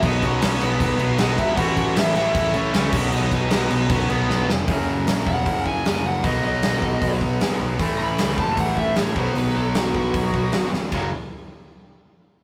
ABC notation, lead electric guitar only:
X:1
M:4/4
L:1/8
Q:1/4=154
K:B
V:1 name="Lead electric guitar"
[Dd] [Cc]2 [B,B] [B,B]2 [Dd] [Ee] | [Ff]2 [Ee] [Ee]2 [Cc]3 | [Dd]2 [Dd]2 [Cc] [B,B]2 z | z3 f2 g2 f |
d d4 z3 | z b2 =a f e c ^B | B =A F F4 z | z8 |]